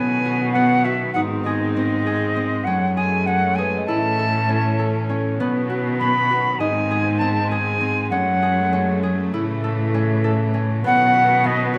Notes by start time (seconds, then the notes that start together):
Already playing: B2 D#3 F#3 B3 C#4 E4 A4 G#5
0.25 F#4
0.52 B3 F#5
0.84 F#4 E5
1.13 G#2 G#3 C4 D#4 F#5
1.43 G#4 D#5
1.73 C4 D#5
2.06 G#4
2.36 C4
2.64 F#2 F#3 A3 C#4 F#5
2.95 G#4 G#5
3.26 C#4 F#5
3.55 G#4 G#5
3.59 B4
3.77 D#5
3.85 A2 E3 C#4 E4 A5
3.99 E5
4.19 A4
4.49 C#4
4.79 A4
5.09 C#4
5.39 B2 D#3 F#3 B3
5.70 F#4
5.99 B3 B5
6.31 F#4
6.59 G#2 G#3 C4 D#4 D#5 G#5
6.91 G#4
7.18 C4 A5
7.48 G#4 G#5
7.81 C4
8.10 F#2 F#3 A3 C#4 F#5
8.42 G#4
8.73 C#4
9.03 G#4
9.32 A2 C#3 E3 E4
9.64 A4
9.94 C#4
10.24 A4
10.54 C#4
10.84 B2 D#3 F#3 B3 F#5
11.14 F#4
11.44 B3 D#5
11.74 F#4 C#5